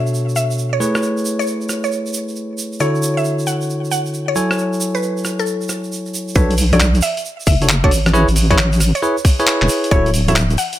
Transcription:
Already playing: B2 D4 F#4 A4 C#5 E5
0.07 shaker
0.14 shaker
0.29 shaker
0.36 E5, shaker
0.51 shaker
0.58 shaker
0.73 C#5
0.80 A3 E4 G#4 B4 C#5, shaker
0.95 cross-stick, shaker
1.03 shaker
1.17 shaker
1.25 shaker
1.39 C#5, shaker
1.47 shaker
1.61 shaker
1.69 cross-stick, shaker
1.84 C#5, shaker
1.92 shaker
2.06 shaker
2.13 shaker
2.28 shaker
2.36 shaker
2.58 shaker
2.73 shaker
2.80 D3 E4 F#4 A4 C#5, shaker
2.95 shaker
3.03 shaker
3.17 E5, shaker
3.24 shaker
3.39 shaker
3.47 F#5, shaker
3.61 shaker
3.70 shaker
3.85 shaker
3.91 F#5, shaker
4.06 shaker
4.14 shaker
4.28 C#5
4.36 F#3 E4 A4 C#5 G#5, shaker
4.51 cross-stick, shaker
4.58 shaker
4.73 shaker
4.81 shaker
4.95 B4, shaker
5.03 shaker
5.17 shaker
5.25 cross-stick, shaker
5.39 A4, shaker
5.46 shaker
5.61 shaker
5.69 cross-stick, shaker
5.84 shaker
5.92 shaker
6.06 shaker
6.14 shaker
6.28 shaker
6.35 B1 D4 F#4 A4 B4 C#5, kick, shaker
6.51 closed hi-hat, shaker
6.58 open hi-hat, shaker
6.73 D4 F#4 A4 C#5 D5, closed hi-hat, high conga, shaker
6.80 clap, shaker
6.95 closed hi-hat, shaker
7.02 E5, open hi-hat, shaker
7.17 closed hi-hat, shaker
7.25 shaker
7.40 shaker
7.47 F#1 E5, kick, open hi-hat, shaker
7.62 D4 F#4 A4 C#5, closed hi-hat, shaker
7.69 clap, shaker
7.84 D4 F#4 A4 C#5 D5, kick, closed hi-hat
7.91 A1, open hi-hat, shaker
8.06 cross-stick, closed hi-hat, high conga, shaker
8.14 E4 G#4 B4 C#5, shaker
8.28 A1, closed hi-hat, shaker
8.36 open hi-hat, shaker
8.51 E4 G#4 B4 C#5, kick, closed hi-hat, high conga, shaker
8.58 clap, shaker
8.73 closed hi-hat, shaker
8.80 cross-stick, open hi-hat, shaker
8.95 C#5, closed hi-hat, shaker
9.02 E4 G#4 B4 C#5, shaker
9.18 shaker
9.25 kick, open hi-hat, shaker
9.39 E4 G#4 B4 C#5, closed hi-hat, shaker
9.47 clap, shaker
9.62 E1, clap, closed hi-hat
9.69 open hi-hat, shaker
9.84 closed hi-hat, shaker
9.91 D1 E4 F#4 A4 C#5, kick, shaker
10.06 closed hi-hat, shaker
10.14 open hi-hat, shaker
10.28 E4 F#4 A4 C#5 E5, closed hi-hat, high conga, shaker
10.36 clap, shaker
10.50 closed hi-hat, shaker
10.58 F#5, open hi-hat, shaker
10.73 closed hi-hat, shaker

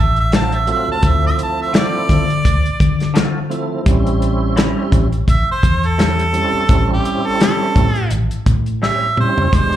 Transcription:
Already playing: A1
0.00 E5
0.16 E5, closed hi-hat
0.32 D3 F#3 C4 F4 A5, snare, closed hi-hat
0.52 E5, closed hi-hat
0.67 F#3 A3 C4 F4, closed hi-hat
0.71 E5
0.88 A5, muted fingered electric bass stroke
1.02 D2 F3 A3 C4 E4, kick, closed hi-hat
1.08 E5
1.27 E5
1.39 closed hi-hat
1.43 A5
1.62 E5
1.73 D3 A3 C4 F4, snare, closed hi-hat
1.78 D5
2.09 D3, kick, closed hi-hat
2.30 closed hi-hat
2.45 D2, kick, closed hi-hat
2.65 muted fingered electric bass stroke, closed hi-hat
2.80 D3, kick, closed hi-hat
3.00 snare, closed hi-hat
3.14 D3 A3 C4 F4, snare, closed hi-hat
3.49 F3 A3 C4 E4, closed hi-hat
3.85 A1 G3 C4 C#4 E4, kick, closed hi-hat
4.07 closed hi-hat
4.22 closed hi-hat
4.56 A2 G3 C4 C#4, snare, closed hi-hat
4.92 A1, kick, closed hi-hat
5.12 closed hi-hat
5.28 A1 E5, kick, closed hi-hat
5.47 muted fingered electric bass stroke
5.52 C5
5.63 E2, kick, closed hi-hat
5.84 A4, closed hi-hat
5.98 A2 G3 C4 C#4, snare, closed hi-hat
6.19 closed hi-hat
6.33 G3 C4 C#4 E4, closed hi-hat
6.53 muted fingered electric bass stroke
6.67 A1 G3 C4 C#4 E4, kick, closed hi-hat
6.94 G4
7.05 closed hi-hat
7.27 A4
7.40 A2 G3 C4 C#4 A4, snare, closed hi-hat
7.76 A2, kick, closed hi-hat
7.95 closed hi-hat
8.10 A1, closed hi-hat
8.30 muted fingered electric bass stroke, closed hi-hat
8.46 A2, kick, closed hi-hat
8.66 closed hi-hat
8.82 A2 G3 C4 C#4 E5, snare
9.16 G3 C4 C#4 E4 C5, mid tom
9.38 floor tom
9.52 E1 B2 G#3 D4 G4 C5, kick, closed hi-hat
9.72 closed hi-hat

